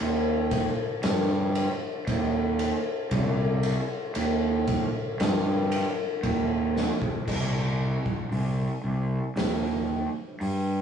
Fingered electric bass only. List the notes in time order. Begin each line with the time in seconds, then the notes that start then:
0.01 D#2
1.04 G2
2.07 D#2
3.11 C2
4.16 D#2
5.20 G2
6.23 D#2
7.27 C2
8.31 C2
8.84 C2
9.36 D#2
10.41 G2